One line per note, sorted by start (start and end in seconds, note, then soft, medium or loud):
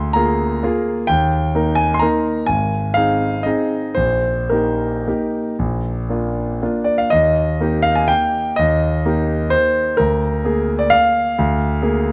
0.00 0.14 D2 medium
0.00 0.14 C6 loud
0.13 0.59 A#3 soft
0.13 0.60 F4 soft
0.13 0.60 G#4 medium
0.13 0.86 A#5 medium
0.63 1.05 A#3 medium
0.63 1.06 F4 medium
0.63 1.06 G#4 medium
1.07 1.53 D#2 medium
1.07 1.76 G5 loud
1.55 1.98 A#3 soft
1.55 1.98 D#4 soft
1.55 1.98 A#4 medium
1.75 1.93 G#5 medium
1.94 2.01 C6 medium
1.99 2.45 A#3 soft
1.99 2.45 D#4 soft
1.99 2.45 A#4 soft
1.99 2.48 A#5 medium
2.46 2.95 G#1 medium
2.46 2.95 G#5 medium
2.94 3.42 C4 soft
2.94 3.42 D#4 soft
2.94 3.42 G#4 soft
2.94 3.45 F5 medium
3.43 3.93 C4 soft
3.43 3.93 D#4 soft
3.43 3.93 G#4 soft
3.43 3.96 D#5 medium
3.95 4.49 A#1 medium
3.95 4.49 C5 medium
4.49 5.02 A#3 soft
4.49 5.02 D#4 soft
4.49 5.03 G4 soft
4.49 6.60 A#4 medium
5.07 5.54 A#3 soft
5.07 5.55 D#4 soft
5.07 5.55 G4 soft
5.59 6.08 A#1 medium
6.10 6.57 A#3 soft
6.10 6.57 D4 soft
6.10 6.57 F4 soft
6.62 7.09 A#3 soft
6.62 7.09 D4 soft
6.62 7.09 F4 soft
6.84 6.98 D5 medium
6.98 7.11 F5 medium
7.10 7.59 D#2 medium
7.10 7.84 D#5 medium
7.61 8.53 A#3 soft
7.61 8.54 D#4 soft
7.61 8.54 G4 medium
7.83 7.96 F5 loud
7.95 8.09 G#5 medium
8.08 8.56 G5 loud
8.56 9.03 D#2 medium
8.56 9.51 D#5 medium
9.05 9.95 A#3 medium
9.05 9.96 D#4 soft
9.05 9.96 G4 medium
9.50 9.98 C5 loud
9.97 10.43 D2 medium
9.97 10.79 A#4 medium
10.45 11.34 A#3 soft
10.45 11.35 G#4 medium
10.79 10.91 D5 medium
10.90 12.12 F5 loud
11.38 11.82 D2 medium
11.82 12.12 A#3 medium
11.82 12.12 G#4 medium